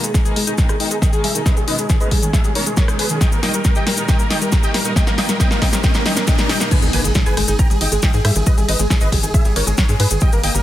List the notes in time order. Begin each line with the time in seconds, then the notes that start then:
Already playing: riser
0.03 G#3 G#4, closed hi-hat, cabasa
0.14 B2 D#3 G#3 D#4 G#4, kick, snare, closed hi-hat, cabasa
0.25 B2 D#3 G#3 D#4 G#4 B4 G#5, closed hi-hat, cabasa
0.36 G#3 G#4, open hi-hat
0.47 B2 D#3 G#3 D#4 G#4, closed hi-hat, cabasa
0.58 B2 D#3 G#3 B3 D#4 G5 A#5, kick, snare, closed hi-hat, cabasa
0.69 G3 G#4, cross-stick, closed hi-hat, cabasa
0.80 B2 D#3 G#3 D#4 D#5 G5, open hi-hat
0.91 G#3 G#4, closed hi-hat, cabasa
1.02 B2 D#3 G#3 D#4 D#5 G5, kick, snare, closed hi-hat, cabasa
1.13 B2 D#3 G#3 D#4 G#4, closed hi-hat, cabasa
1.24 G3 G#4 E5, open hi-hat
1.35 B2 D#3 G#3 D#4 G#4, closed hi-hat, cabasa
1.45 B2 D#3 G3 G#3 C#4 B4 D#5, kick, snare, closed hi-hat, cabasa
1.57 G3 G#4, closed hi-hat, cabasa
1.67 B2 D#3 G#3 C#4 D#4 B4 D#5, open hi-hat
1.78 G#3 G#4, closed hi-hat, cabasa
1.89 B2 D#3 G#3 C#4 G#4, kick, snare, closed hi-hat, cabasa
2.00 B2 D#3 G#3 C#4 G#4 B4 D#5, closed hi-hat, cabasa
2.11 G3 G#4, kick, open hi-hat
2.22 B2 D#3 G#3 C#4 G#4, closed hi-hat, cabasa
2.33 B2 D#3 G#3 C#4 G#4 E5, kick, snare, closed hi-hat, cabasa
2.44 G3 G#4, closed hi-hat, cabasa
2.55 B2 D#3 G#3 C#4 D#4 A#4 C#5, open hi-hat
2.66 G#3 G#4, closed hi-hat, cabasa
2.77 B2 D#3 G#3 C#4 A#4 C#5, kick, snare, closed hi-hat, cabasa
2.88 B2 D#3 G#3 C#4 G#4, cross-stick, closed hi-hat, cabasa
2.99 G#3 G#4 B4, open hi-hat
3.09 B2 D#3 G#3 C#4 G#4, closed hi-hat, cabasa
3.21 A#2 D#3 G3 D#4 D#5 G5, kick, snare, closed hi-hat, cabasa
3.32 A#3 A#4, closed hi-hat, cabasa
3.43 A#2 D#3 G3 A#3 D#4 D#5 G5, snare, open hi-hat
3.54 G3 A#4, closed hi-hat, cabasa
3.64 A#2 D#3 G3 D#4 A#4, kick, snare, closed hi-hat, cabasa
3.75 A#2 D#3 G3 D#4 G4 D#5 G5, closed hi-hat, cabasa
3.87 G3 A#4, snare, open hi-hat
3.97 A#2 D#3 G3 D#4 A#4, cabasa
4.08 A#2 D#3 G3 D#4 D#5 G5, kick, snare, closed hi-hat, cabasa
4.19 A#3 A#4, closed hi-hat, cabasa
4.30 A#2 D#3 G3 A#3 D#4 D#5 G5, snare, open hi-hat
4.41 G3 A#4, closed hi-hat, cabasa
4.52 A#2 D#3 G3 D#4 A#4, kick, snare, closed hi-hat, cabasa
4.63 A#2 D#3 G3 D#4 G4 D#5 G5, closed hi-hat, cabasa
4.74 G3 A#4, snare, open hi-hat
4.85 A#2 D#3 G3 D#4 A#4, closed hi-hat, cabasa
4.96 A#2 D#3 G3 D#4 D#5 G5, kick, snare, closed hi-hat, cabasa
5.07 A#3 A#4, snare, closed hi-hat, cabasa
5.18 A#2 D#3 G3 A#3 D#4 D#5 G5, snare, open hi-hat
5.29 G3 A#4, snare, closed hi-hat, cabasa
5.40 A#2 D#3 G3 D#4 D#5 G5, kick, snare, closed hi-hat, cabasa
5.51 A#2 D#3 G3 A#3 D#4 A#4, snare, closed hi-hat, cabasa
5.62 A#3 D#5 G5, kick, snare, open hi-hat
5.73 A#2 D#3 G3 D#4 A#4, snare, closed hi-hat, cabasa
5.83 A#2 D#3 G3 D#4 D#5 G5, kick, snare, closed hi-hat, cabasa
5.94 A#3 A#4, snare, closed hi-hat, cabasa
6.05 A#2 D#3 G3 D#4 D#5 G5, snare, open hi-hat
6.17 A#3 A#4, snare, closed hi-hat, cabasa
6.27 A#2 D#3 G3 D#4 D#5 G5, kick, snare, closed hi-hat, cabasa
6.38 A#2 D#3 G3 A#3 D#4 A#4, snare, closed hi-hat, cabasa
6.49 G3 D#5 G5, snare, open hi-hat
6.60 A#2 D#3 G3 A#3 D#4 A#4, snare, cabasa
6.71 G#3 B4 G#5, kick, closed hi-hat, crash, impact, cabasa
6.82 G#1 B3 G#4, closed hi-hat, cabasa
6.93 G#1 A#3 B4 G#5, open hi-hat, ride
7.04 G#1 G#3 G#4, closed hi-hat, cabasa
7.15 G#3 G#4, kick, snare, closed hi-hat, cabasa
7.26 G#1 G#4 B4 G#5, closed hi-hat, cabasa
7.37 G#1 G#3 G#4, cross-stick, open hi-hat, ride
7.48 G#1 D#4 G#4, closed hi-hat, cabasa
7.59 B3 G5 A#5, kick, closed hi-hat, cabasa
7.70 G#1 G3 G#4, closed hi-hat, cabasa
7.81 G#1 D#4 D#5 G5, open hi-hat, ride
7.92 G#1 G#3 G#4, closed hi-hat, cabasa
8.02 D#3 D#5 G5, kick, snare, closed hi-hat, cabasa
8.13 G#2 G#4, closed hi-hat, cabasa
8.25 G#2 G3 G#4 E5, cross-stick, open hi-hat, ride
8.35 G#1 D#3 G#4, closed hi-hat, cabasa
8.46 G3 B4 D#5, kick, closed hi-hat, cabasa
8.57 G#1 G3 G#4, closed hi-hat, cabasa
8.68 G#1 D#4 B4 D#5, open hi-hat, ride
8.79 G#1 G#3 G#4, closed hi-hat, cabasa
8.90 D#3 G#4, kick, snare, closed hi-hat, cabasa
9.01 G#1 G#4 B4 D#5, closed hi-hat, cabasa
9.12 G#1 G3 G#4, kick, open hi-hat, ride
9.23 G#1 D#3 G#4, closed hi-hat, cabasa
9.34 G#4 E5, kick, closed hi-hat, cabasa
9.45 G#1 G3 G#4, closed hi-hat, cabasa
9.56 G#1 D#4 A#4 C#5, open hi-hat, ride
9.67 G#1 G#3 G#4, closed hi-hat, cabasa
9.77 D#3 A#4 C#5, kick, snare, closed hi-hat, cabasa
9.89 G#2 G#3 G#4, closed hi-hat, cabasa
10.00 G#2 G#3 G#4 B4, open hi-hat, ride
10.11 G#1 D#3 G#4, closed hi-hat, cabasa
10.20 G3 D#5 G5, kick, closed hi-hat, cabasa
10.32 G#1 A#3 A#4, closed hi-hat, cabasa
10.43 G#1 A#3 D#5 G5, open hi-hat, ride
10.54 G#1 G3 A#4, closed hi-hat, cabasa